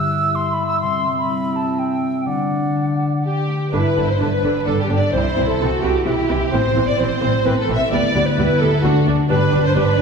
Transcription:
Already playing: G2 G3 B3 E4 G4 E5 E6
0.12 G4
0.34 B3 C6
0.53 G3 B5
0.67 E6
0.81 C3 C4 C6
1.05 G3
1.18 B5
1.29 E4
1.53 G4 A5
1.76 C4 G5
2.01 G3
2.26 D3 D4 D5 F#5
2.50 A3
2.76 D4
2.99 A4
3.24 D4 G4
3.47 A3
3.71 G1 G2 D3 D4 E4 B4
3.95 G1 D3 G3 D4
4.06 C5
4.11 C5
4.18 G1 D3 D4 B4
4.43 G1 D3 G3 D4
4.65 G1 D3 D4 A4
4.81 G4
4.89 G1 D3 D4
4.96 D5
5.12 C2 C3 E3 C4 E4 C5
5.36 C2 E3 C4
5.47 A4
5.60 C2 E3 C4 E4 F#4
5.82 C2 E3 C4 G4
6.05 C2 E3 C4 E4 G4 C5
6.28 C2 E3 C4 G4
6.52 A1 A2 E3 C4 C5
6.76 A1 E3 A3 C4
6.88 D5
6.99 A1 E3 C4 E4 C5
7.22 A1 E3 A3 C4
7.45 A1 E3 C4 A4 B4
7.59 A4
7.68 A1 E3 C4 E4
7.74 E5
7.90 D2 D3 G3 B3 D5
8.15 D2 G3 B3 D4
8.26 B4
8.36 D2 G3 B3 E4 G4
8.60 D2 G3 B3 A4
8.83 D2 D3 A3 D4 F#4
9.05 D2 A3 D4 A4
9.29 G1 G2 G3 D4 B4
9.52 G1 G3 B3 D4
9.65 C5
9.75 G1 G3 D4 B4

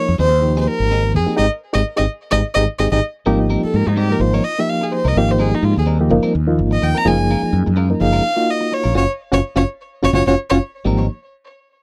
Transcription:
Already playing: C#5
0.08 F2 D#4 G4, muted clean electric guitar stroke
0.18 D#2 F3 C4 D#4 G#4 C5
0.32 muted clean electric guitar stroke
0.42 F3 A#3 D#4 G4, muted clean electric guitar stroke
0.57 F3 C4 D#4 G#4 C5
0.67 A#4, muted clean electric guitar stroke
0.80 G#1
0.91 F3 C4 D#4 G#4
1.04 muted clean electric guitar stroke
1.14 F2 G#4, muted clean electric guitar stroke
1.26 F3 A#3 C4 D#4 G4 G#4, muted fretless electric bass stroke
1.36 G#1 G#3 C4 D#4 G4 G#4 D#5
1.73 G#1 G#3 C4 D#4 G4 G#4 D#5
1.96 G#1 G#3 C4 D#4 G4 G#4 D#5
2.31 G#1 G#3 C4 D#4 G4 G#4 D#5
2.54 G#1 G#3 C4 D#4 G4 G#4 D#5
2.79 G#1 G#3 C4 D#4 G4 G#4 D#5
2.92 G#1 G#3 C4 D#4 G4 G#4 D#5
3.26 G#1 F3 G3 A#3 C4 D#4 G4 A#4
3.50 G3 C4 D#4 A#4
3.64 A4, muted fretless electric bass stroke
3.74 G#2 A#4
3.85 G#2 D#4, muted clean electric guitar stroke
3.96 G3 C4 D#4 G4 A#4
4.10 F3 A#3 D#4 G4 A#4, muted clean electric guitar stroke
4.20 G#1 F3 A#3 D#4 F4 C5, muted clean electric guitar stroke
4.33 G3 C4 D#4 A#4 C#5
4.44 D#5, muted clean electric guitar stroke
4.59 F3 A#3 D#4 G4 E5
4.69 F5
4.81 G#4, muted clean electric guitar stroke
4.92 C5, muted clean electric guitar stroke
5.05 C2 C4 D#4 A#4 D#5
5.15 G#1 F3 A#3 D#4 G4 F5
5.29 C5, muted clean electric guitar stroke
5.38 G3 C4 D#4 G#4 A#4
5.52 D#4, muted clean electric guitar stroke
5.63 G#2 F4
5.76 D#2 G#4, muted clean electric guitar stroke
5.86 G3 C4 D#4 G4 A#4
5.99 F3 A#3 D#4 G4, muted clean electric guitar stroke
6.10 G1 F3 A#3 D#4 A#4, muted clean electric guitar stroke
6.23 G3 C4 D#4 A#4
6.34 D#2 D#4 F4, muted clean electric guitar stroke
6.47 F3 A#3 D#4 F4
6.59 G#1
6.71 D#5, muted clean electric guitar stroke
6.82 D#2 G5, muted clean electric guitar stroke
6.95 C4 D#4 A#4 A#5, muted fretless electric bass stroke
7.05 F#1 F3 G#3 A#3 C#4 D#4 F4 G#4 A#4 G#5
7.19 muted clean electric guitar stroke
7.30 G#3 C#4 F4 A#4
7.43 muted fretless electric bass stroke, muted clean electric guitar stroke
7.53 F#2
7.66 F#2, muted clean electric guitar stroke
7.76 G#3 C#4 D#4 F4 G#4 A#4
7.90 F3 A#3 D#4 A#4
8.00 F#1 F3 A#3 D#4 G#4 F5, muted clean electric guitar stroke
8.13 G#3 C#4 F4 A#4
8.24 D#4 F4, muted clean electric guitar stroke
8.36 A#3 D#4 F4 F#4
8.50 D#5
8.61 muted clean electric guitar stroke
8.72 C#5, muted clean electric guitar stroke
8.83 A#1 C#4 F4 A#4
8.95 F#1 C#4 F4 F#4 C#5
9.32 F#1 C#4 F4 F#4 C#5
9.56 F#1 C#4 F4 F#4 C#5
10.03 F#1 C#4 F4 F#4 C#5
10.13 F#1 C#4 F4 F#4 C#5
10.27 F#1 C#4 F4 F#4 C#5
10.50 F#1 C#4 F4 F#4 C#5
10.85 G#1 F3 G3 A#3 C4 D#4 G4 A#4

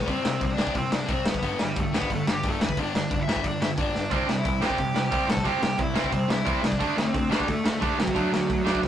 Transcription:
0.05 C2 C3 G3 C4, kick, open hi-hat
0.10 C4 C5
0.22 C3 G3, snare
0.26 C2
0.39 C2 C3 G3 C4, kick, open hi-hat
0.45 C5
0.52 D4 D5
0.57 C2 C3 G3 C4, snare
0.67 kick
0.73 C2 C3 G3 C4, kick, open hi-hat
0.78 C5
0.91 C2 C3 G3 D4 D5, snare
1.06 C2 C3 G3 C4, kick, open hi-hat
1.10 C4 C5
1.25 C2 C3 G3 B3, snare
1.30 B4, kick
1.42 G1 G2 D3 G3, kick, open hi-hat
1.58 G1 G2 D3, snare
1.62 G3 G4
1.76 G1 G2 D3 A3, kick, open hi-hat
1.82 A4
1.92 G1 G2 D3 G3 B3, snare
1.98 B4, kick
2.09 G1 G2 D3 A3, kick, open hi-hat
2.15 A4
2.27 G1 G2 D3 G3, snare
2.31 G4
2.43 G1 G2 D3 G3 A3, kick, open hi-hat
2.49 A4
2.60 E2 G2 D3 B3, snare
2.66 B4, kick
2.77 G1 G2 D3 G3 D4, kick, open hi-hat
2.83 D5
2.93 G1 G2 D3 D4, snare
2.98 D5
3.09 G1 G2 D3 D4, kick, open hi-hat
3.14 D5
3.19 E4 E5
3.27 G1 G2 D3 G3, snare
3.36 kick
3.44 G1 G2 D3 D4 D5, kick, open hi-hat
3.60 G1 G2 D3 E4 E5, snare
3.76 G1 G2 D3 G3 D4, kick, open hi-hat
3.81 D5
3.93 G1 G2 D3, snare
4.11 C2 C3 G3 C4 D4 D5, kick, open hi-hat
4.27 C2 C3 G3, snare
4.39 E4 E5
4.45 C2 C3 G3, kick, open hi-hat
4.61 C2 C3 G3 C4 G4, snare
4.66 G5
4.70 kick
4.78 C2 C3 G3, kick, open hi-hat
4.94 C2 C3 G3, snare
5.04 G4 G5
5.11 C2 C3 G3 C4, kick, open hi-hat
5.27 A2 C3 G3 A4, snare
5.32 A5
5.37 kick
5.44 C2 C3 G3 C4 G4 G5, kick, open hi-hat
5.60 C2 C3 G3, snare
5.76 C2 C3 G3 E4, kick, open hi-hat
5.82 E5
5.94 C2 C3 G3 C4, snare
6.04 kick
6.11 C2 C3 G3 C4 C5, kick, open hi-hat
6.28 C2 C3 G3 E4 E5, snare
6.44 C2 C3 G3 C4, kick, open hi-hat
6.63 C2 C3 G3 D4 D5, snare
6.72 kick
6.79 D2 D3 A3 D4, kick, open hi-hat
6.95 D2 D3 A3 C4 C5, snare
7.13 D2 D3 A3, kick, open hi-hat
7.29 D2 D3 G3 A3 D4 G4, snare
7.40 kick
7.46 D2 D3 A3, kick, open hi-hat
7.50 A4
7.64 D2 D3 A3, snare
7.79 D2 D3 G3 A3 D4, kick, open hi-hat
7.83 G4
7.97 C3 D3 F#3 A3 F#4, snare
8.08 kick
8.14 D2 D3 A3 D4, kick, open hi-hat
8.32 D2 D3 A3, snare
8.48 D2 D3 A3, kick, open hi-hat
8.64 D2 D3 A3 D4, snare
8.75 kick
8.81 D2 D3 A3, kick, snare

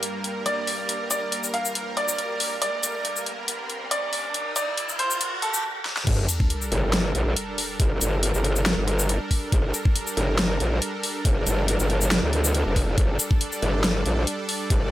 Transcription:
Already playing: G2 G3 A#3 A#4, riser
0.03 closed hi-hat
0.24 closed hi-hat
0.46 D5, closed hi-hat
0.67 open hi-hat
0.89 closed hi-hat
1.11 D5, closed hi-hat, shaker
1.32 closed hi-hat
1.44 shaker
1.54 F5, closed hi-hat
1.65 shaker
1.75 closed hi-hat
1.97 D5, closed hi-hat
2.08 shaker
2.18 closed hi-hat
2.40 open hi-hat
2.62 D5, closed hi-hat
2.83 closed hi-hat, shaker
3.05 closed hi-hat
3.16 shaker
3.26 closed hi-hat
3.48 closed hi-hat
3.70 closed hi-hat
3.91 D5, closed hi-hat
4.13 open hi-hat
4.34 closed hi-hat
4.56 D5, closed hi-hat, shaker
4.77 closed hi-hat
4.89 shaker
4.99 C5, closed hi-hat
5.11 shaker
5.21 closed hi-hat
5.42 A4, closed hi-hat
5.54 shaker
5.85 snare
5.97 snare
6.07 G1 G3 D4 A4 A#4, kick, closed hi-hat, crash, sub drop
6.29 closed hi-hat, shaker
6.40 kick
6.50 closed hi-hat
6.62 shaker
6.72 G1, closed hi-hat
6.93 snare, closed hi-hat
7.15 A#1, closed hi-hat
7.36 closed hi-hat
7.58 open hi-hat
7.80 G1, kick, closed hi-hat
8.01 G1, closed hi-hat, shaker
8.23 closed hi-hat
8.34 G1, shaker
8.44 closed hi-hat
8.56 shaker
8.66 snare, closed hi-hat
8.77 G1
8.88 closed hi-hat
8.99 shaker
9.09 closed hi-hat
9.31 kick, open hi-hat
9.52 G1, kick, closed hi-hat
9.74 closed hi-hat, shaker
9.85 kick
9.96 closed hi-hat
10.07 shaker
10.17 G1, closed hi-hat
10.39 snare, closed hi-hat
10.60 A#1, closed hi-hat
10.82 closed hi-hat
11.03 open hi-hat
11.25 G1, kick, closed hi-hat
11.47 G1, closed hi-hat, shaker
11.68 closed hi-hat
11.80 G1, shaker
11.90 closed hi-hat
12.01 shaker
12.11 snare, closed hi-hat
12.23 D2
12.33 closed hi-hat
12.44 shaker
12.54 closed hi-hat
12.66 F1
12.76 kick, open hi-hat
12.98 G1 D5, kick, closed hi-hat
13.19 closed hi-hat, shaker
13.31 kick
13.41 closed hi-hat
13.52 shaker
13.62 G1, closed hi-hat
13.84 snare, closed hi-hat
14.06 A#1, closed hi-hat
14.27 closed hi-hat
14.49 open hi-hat
14.70 G1, kick, closed hi-hat

